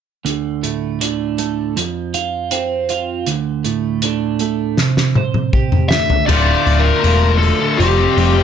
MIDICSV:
0, 0, Header, 1, 7, 480
1, 0, Start_track
1, 0, Key_signature, -1, "minor"
1, 0, Tempo, 753769
1, 159, Time_signature, 4, 2, 24, 8
1, 5369, End_track
2, 0, Start_track
2, 0, Title_t, "Lead electric guitar"
2, 0, Program_c, 0, 29
2, 3749, Note_on_c, 0, 76, 81
2, 3986, Note_off_c, 0, 76, 0
2, 3988, Note_on_c, 0, 74, 78
2, 4325, Note_on_c, 0, 70, 79
2, 4365, Note_off_c, 0, 74, 0
2, 4696, Note_off_c, 0, 70, 0
2, 4699, Note_on_c, 0, 69, 71
2, 4951, Note_on_c, 0, 67, 71
2, 4956, Note_off_c, 0, 69, 0
2, 5369, Note_off_c, 0, 67, 0
2, 5369, End_track
3, 0, Start_track
3, 0, Title_t, "Distorted electric guitar"
3, 0, Program_c, 1, 30
3, 4012, Note_on_c, 1, 57, 92
3, 4951, Note_off_c, 1, 57, 0
3, 5369, End_track
4, 0, Start_track
4, 0, Title_t, "Clean electric guitar"
4, 0, Program_c, 2, 27
4, 157, Note_on_c, 2, 38, 64
4, 402, Note_on_c, 2, 45, 54
4, 641, Note_on_c, 2, 50, 53
4, 883, Note_on_c, 2, 57, 54
4, 1119, Note_off_c, 2, 38, 0
4, 1121, Note_off_c, 2, 45, 0
4, 1121, Note_off_c, 2, 50, 0
4, 1121, Note_off_c, 2, 57, 0
4, 1123, Note_on_c, 2, 41, 59
4, 1364, Note_on_c, 2, 65, 63
4, 1603, Note_on_c, 2, 60, 62
4, 1840, Note_off_c, 2, 65, 0
4, 1848, Note_on_c, 2, 65, 66
4, 2077, Note_off_c, 2, 41, 0
4, 2079, Note_on_c, 2, 38, 67
4, 2082, Note_off_c, 2, 60, 0
4, 2084, Note_off_c, 2, 65, 0
4, 2321, Note_on_c, 2, 45, 62
4, 2571, Note_on_c, 2, 50, 60
4, 2806, Note_on_c, 2, 57, 59
4, 3040, Note_off_c, 2, 38, 0
4, 3041, Note_off_c, 2, 45, 0
4, 3044, Note_off_c, 2, 57, 0
4, 3046, Note_off_c, 2, 50, 0
4, 3046, Note_on_c, 2, 48, 59
4, 3292, Note_on_c, 2, 72, 59
4, 3529, Note_on_c, 2, 67, 56
4, 3763, Note_off_c, 2, 48, 0
4, 3765, Note_off_c, 2, 67, 0
4, 3766, Note_off_c, 2, 72, 0
4, 3770, Note_on_c, 2, 38, 57
4, 3988, Note_off_c, 2, 38, 0
4, 3996, Note_on_c, 2, 38, 92
4, 4003, Note_on_c, 2, 45, 83
4, 4009, Note_on_c, 2, 50, 94
4, 4014, Note_on_c, 2, 65, 91
4, 4354, Note_off_c, 2, 65, 0
4, 4361, Note_on_c, 2, 65, 64
4, 4369, Note_off_c, 2, 50, 0
4, 4376, Note_on_c, 2, 50, 49
4, 4466, Note_off_c, 2, 38, 0
4, 4473, Note_on_c, 2, 38, 70
4, 4474, Note_off_c, 2, 45, 0
4, 4477, Note_off_c, 2, 50, 0
4, 4482, Note_on_c, 2, 45, 79
4, 4484, Note_on_c, 2, 50, 80
4, 4486, Note_off_c, 2, 65, 0
4, 4494, Note_on_c, 2, 65, 74
4, 4836, Note_off_c, 2, 65, 0
4, 4841, Note_off_c, 2, 50, 0
4, 4844, Note_off_c, 2, 45, 0
4, 4942, Note_off_c, 2, 38, 0
4, 4959, Note_on_c, 2, 41, 75
4, 4968, Note_on_c, 2, 48, 81
4, 4970, Note_on_c, 2, 53, 75
4, 4972, Note_on_c, 2, 55, 84
4, 4977, Note_on_c, 2, 60, 84
4, 4977, Note_on_c, 2, 65, 80
4, 5072, Note_off_c, 2, 65, 0
4, 5079, Note_off_c, 2, 60, 0
4, 5080, Note_on_c, 2, 65, 55
4, 5085, Note_off_c, 2, 55, 0
4, 5087, Note_on_c, 2, 60, 61
4, 5090, Note_off_c, 2, 53, 0
4, 5092, Note_on_c, 2, 55, 53
4, 5097, Note_on_c, 2, 53, 45
4, 5192, Note_off_c, 2, 53, 0
4, 5199, Note_on_c, 2, 53, 63
4, 5200, Note_off_c, 2, 55, 0
4, 5201, Note_off_c, 2, 60, 0
4, 5207, Note_on_c, 2, 55, 68
4, 5208, Note_off_c, 2, 65, 0
4, 5209, Note_on_c, 2, 60, 65
4, 5216, Note_on_c, 2, 65, 69
4, 5316, Note_off_c, 2, 65, 0
4, 5318, Note_off_c, 2, 55, 0
4, 5319, Note_off_c, 2, 41, 0
4, 5320, Note_off_c, 2, 60, 0
4, 5321, Note_off_c, 2, 53, 0
4, 5323, Note_off_c, 2, 48, 0
4, 5369, End_track
5, 0, Start_track
5, 0, Title_t, "Picked electric bass"
5, 0, Program_c, 3, 34
5, 4009, Note_on_c, 3, 26, 86
5, 4152, Note_off_c, 3, 26, 0
5, 4245, Note_on_c, 3, 26, 78
5, 4389, Note_off_c, 3, 26, 0
5, 4484, Note_on_c, 3, 28, 72
5, 4774, Note_off_c, 3, 28, 0
5, 4966, Note_on_c, 3, 29, 81
5, 5110, Note_off_c, 3, 29, 0
5, 5204, Note_on_c, 3, 29, 65
5, 5348, Note_off_c, 3, 29, 0
5, 5369, End_track
6, 0, Start_track
6, 0, Title_t, "Muted clean electric guitar strokes"
6, 4844, Note_on_c, 9, 29, 43
6, 4908, Note_off_c, 9, 29, 0
6, 5324, Note_on_c, 9, 29, 49
6, 5369, Note_off_c, 9, 29, 0
6, 5369, End_track
7, 0, Start_track
7, 0, Title_t, "Drums"
7, 164, Note_on_c, 9, 42, 61
7, 228, Note_off_c, 9, 42, 0
7, 404, Note_on_c, 9, 42, 53
7, 468, Note_off_c, 9, 42, 0
7, 645, Note_on_c, 9, 42, 78
7, 708, Note_off_c, 9, 42, 0
7, 881, Note_on_c, 9, 42, 56
7, 944, Note_off_c, 9, 42, 0
7, 1127, Note_on_c, 9, 42, 69
7, 1190, Note_off_c, 9, 42, 0
7, 1362, Note_on_c, 9, 42, 60
7, 1425, Note_off_c, 9, 42, 0
7, 1599, Note_on_c, 9, 42, 79
7, 1662, Note_off_c, 9, 42, 0
7, 1840, Note_on_c, 9, 42, 51
7, 1903, Note_off_c, 9, 42, 0
7, 2079, Note_on_c, 9, 42, 69
7, 2143, Note_off_c, 9, 42, 0
7, 2321, Note_on_c, 9, 42, 53
7, 2385, Note_off_c, 9, 42, 0
7, 2560, Note_on_c, 9, 42, 72
7, 2623, Note_off_c, 9, 42, 0
7, 2798, Note_on_c, 9, 42, 50
7, 2861, Note_off_c, 9, 42, 0
7, 3040, Note_on_c, 9, 38, 45
7, 3104, Note_off_c, 9, 38, 0
7, 3166, Note_on_c, 9, 38, 45
7, 3230, Note_off_c, 9, 38, 0
7, 3282, Note_on_c, 9, 47, 57
7, 3346, Note_off_c, 9, 47, 0
7, 3402, Note_on_c, 9, 47, 54
7, 3466, Note_off_c, 9, 47, 0
7, 3523, Note_on_c, 9, 36, 63
7, 3586, Note_off_c, 9, 36, 0
7, 3643, Note_on_c, 9, 45, 60
7, 3707, Note_off_c, 9, 45, 0
7, 3761, Note_on_c, 9, 38, 77
7, 3825, Note_off_c, 9, 38, 0
7, 3884, Note_on_c, 9, 43, 62
7, 3947, Note_off_c, 9, 43, 0
7, 4004, Note_on_c, 9, 49, 70
7, 4067, Note_off_c, 9, 49, 0
7, 4246, Note_on_c, 9, 46, 47
7, 4309, Note_off_c, 9, 46, 0
7, 4484, Note_on_c, 9, 46, 60
7, 4547, Note_off_c, 9, 46, 0
7, 4730, Note_on_c, 9, 46, 42
7, 4794, Note_off_c, 9, 46, 0
7, 4968, Note_on_c, 9, 46, 61
7, 5032, Note_off_c, 9, 46, 0
7, 5207, Note_on_c, 9, 46, 47
7, 5271, Note_off_c, 9, 46, 0
7, 5369, End_track
0, 0, End_of_file